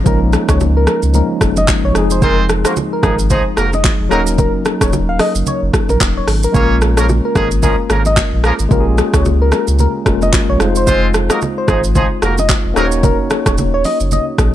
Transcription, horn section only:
2.22 2.44 G#3 loud
2.22 2.44 C4 loud
2.22 2.44 F4 loud
2.22 2.44 C5 loud
2.65 2.74 A#3 medium
2.65 2.74 F#4 medium
2.65 2.74 A#4 medium
3.03 3.16 F3 medium
3.03 3.16 G#3 medium
3.03 3.16 D#4 medium
3.03 3.16 G#4 medium
3.30 3.43 F3 medium
3.30 3.43 G#3 medium
3.30 3.43 D#4 medium
3.30 3.43 G#4 loud
3.57 3.70 A#3 medium
3.57 3.70 F#4 medium
3.57 3.70 A#4 medium
4.11 4.21 F#3 medium
4.11 4.21 A#3 medium
4.11 4.21 D#4 medium
4.11 4.21 A#4 loud
6.54 6.76 A#3 loud
6.54 6.76 C#4 loud
6.54 6.76 G#4 loud
6.54 6.76 C#5 loud
6.97 7.07 F3 medium
6.97 7.07 A#3 medium
6.97 7.06 C#4 medium
6.97 7.07 A#4 medium
7.36 7.48 F3 medium
7.36 7.48 G#3 medium
7.36 7.48 C#4 medium
7.36 7.48 G#4 medium
7.62 7.75 F3 medium
7.62 7.75 G#3 medium
7.62 7.75 C#4 medium
7.62 7.75 G#4 medium
7.90 8.02 F3 medium
7.90 8.02 A#3 medium
7.90 8.02 C#4 medium
7.90 8.02 A#4 medium
8.44 8.53 F3 medium
8.44 8.53 A#3 medium
8.44 8.53 C#4 medium
8.44 8.53 A#4 loud
10.87 11.09 G#3 loud
10.87 11.09 C4 loud
10.87 11.09 F4 loud
10.87 11.09 C5 loud
11.30 11.39 A#3 medium
11.30 11.39 F#4 medium
11.30 11.39 A#4 medium
11.68 11.81 F3 medium
11.68 11.81 G#3 medium
11.68 11.81 D#4 medium
11.68 11.81 G#4 medium
11.95 12.08 F3 medium
11.95 12.08 G#3 medium
11.95 12.08 D#4 medium
11.95 12.08 G#4 loud
12.22 12.35 A#3 medium
12.22 12.35 F#4 medium
12.22 12.35 A#4 medium
12.76 12.86 F#3 medium
12.76 12.86 A#3 medium
12.76 12.86 D#4 medium
12.76 12.86 A#4 loud

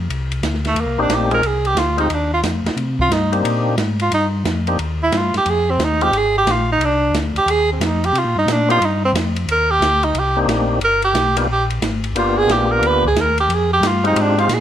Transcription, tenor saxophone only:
0.68 0.82 A3 medium
0.81 1.00 A#3 medium
1.02 1.16 D4 medium
1.14 1.34 G4 medium
1.34 1.48 A#4 medium
1.47 1.68 G#4 medium
1.67 1.80 G4 medium
1.79 1.99 F4 medium
2.00 2.16 D#4 medium
2.14 2.33 D4 medium
2.34 2.40 F4 medium
3.02 3.14 F4 loud
3.13 3.33 D#4 medium
4.02 4.12 F4 medium
4.14 4.26 D#4 medium
5.03 5.19 E4 loud
5.17 5.36 F4 medium
5.38 5.51 G4 medium
5.50 5.72 G#4 medium
5.70 5.85 C4 medium
5.84 6.04 D#4 medium
6.03 6.19 G4 medium
6.17 6.37 G#4 medium
6.38 6.53 G4 loud
6.52 6.70 F4 medium
6.72 6.86 D#4 medium
6.85 7.16 D4 medium
7.38 7.52 G4 loud
7.50 7.70 G#4 loud
7.73 7.87 C4 medium
7.86 8.07 D#4 medium
8.06 8.20 G4 loud
8.19 8.38 F4 medium
8.38 8.53 D#4 loud
8.52 8.71 D4 medium
8.71 8.87 F4 loud
8.85 9.05 D#4 medium
9.05 9.11 C4 medium
9.52 9.72 A#4 loud
9.71 10.06 G4 loud
10.04 10.21 D#4 medium
10.19 10.38 G4 medium
10.85 11.03 A#4 loud
11.04 11.35 G4 loud
11.39 11.44 D#4 medium
11.52 11.64 G4 medium
12.18 12.39 F4 loud
12.38 12.53 G#4 loud
12.52 12.73 G4 loud
12.72 12.88 A#4 loud
12.87 13.06 B4 loud
13.07 13.23 G#4 loud
13.21 13.40 A#4 medium
13.40 13.56 G4 medium
13.54 13.73 G#4 medium
13.73 13.89 G4 loud
13.87 14.06 F4 medium
14.07 14.22 D#4 medium
14.21 14.39 D4 medium
14.40 14.56 F4 medium
14.54 14.60 G#4 medium

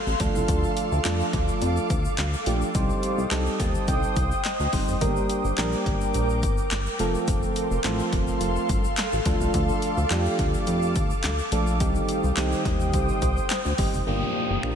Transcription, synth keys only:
0.20 0.89 F3 medium
0.20 0.89 A3 medium
0.20 0.89 D4 medium
0.20 0.89 F4 medium
0.20 0.89 A4 loud
1.05 1.91 F3 medium
1.05 1.91 A3 medium
1.05 1.91 D4 medium
1.05 1.91 F4 medium
1.05 1.91 A4 loud
2.46 2.68 F3 medium
2.46 2.68 A3 medium
2.46 2.68 D4 medium
2.46 2.68 F4 medium
2.46 2.69 G4 medium
2.75 3.18 G3 medium
2.75 3.18 C4 medium
2.75 3.19 D#4 medium
2.75 3.19 G4 medium
2.75 3.19 C5 loud
3.31 4.17 G3 medium
3.31 4.17 C4 medium
3.31 4.17 D#4 medium
3.31 4.17 G4 medium
3.31 4.17 A4 loud
3.60 3.86 A5 medium
3.88 4.41 G5 medium
4.45 4.97 D#5 medium
4.73 4.95 G3 medium
4.73 4.95 C4 medium
4.73 4.95 D#4 medium
4.73 4.95 G4 medium
4.73 4.95 C5 medium
5.01 5.45 G3 medium
5.01 5.45 A#3 medium
5.01 5.45 D4 medium
5.01 5.45 G4 medium
5.01 5.45 A#4 medium
5.58 6.44 G3 medium
5.58 6.44 A#3 medium
5.58 6.44 D4 medium
5.58 6.44 G4 medium
5.58 6.44 A#4 loud
6.99 7.68 F3 medium
6.99 7.68 A3 medium
6.99 7.68 C4 medium
6.99 7.68 F4 medium
6.99 7.68 A4 loud
7.84 8.70 F3 medium
7.84 8.70 A3 medium
7.84 8.70 C4 medium
7.84 8.70 F4 medium
7.84 8.70 A4 loud
9.26 9.94 F3 medium
9.26 9.94 A3 medium
9.26 9.94 D4 medium
9.26 9.94 F4 medium
9.26 9.95 A4 loud
10.10 10.96 F3 medium
10.10 10.96 A3 medium
10.10 10.96 D4 medium
10.10 10.96 F4 medium
10.10 10.97 G4 loud
11.52 11.74 F3 medium
11.52 11.74 A3 medium
11.52 11.74 D4 medium
11.52 11.74 F4 medium
11.52 11.74 A4 medium
11.80 12.24 D#3 medium
11.80 12.24 G3 medium
11.80 12.24 C4 medium
11.80 12.24 D#4 medium
11.80 12.24 G4 loud
12.37 13.23 D#3 medium
12.37 13.23 G3 medium
12.37 13.23 C4 medium
12.37 13.23 D#4 medium
12.37 13.23 G4 loud
13.78 14.00 D#3 medium
13.78 14.00 G3 medium
13.78 14.00 C4 medium
13.78 14.01 D#4 medium
13.78 14.01 G4 medium
14.07 14.51 A#3 medium
14.07 14.51 D4 medium
14.07 14.51 F4 medium
14.07 14.51 G4 medium
14.63 14.75 A#3 medium
14.63 14.75 D4 medium
14.63 14.75 F4 medium
14.63 14.75 G4 medium

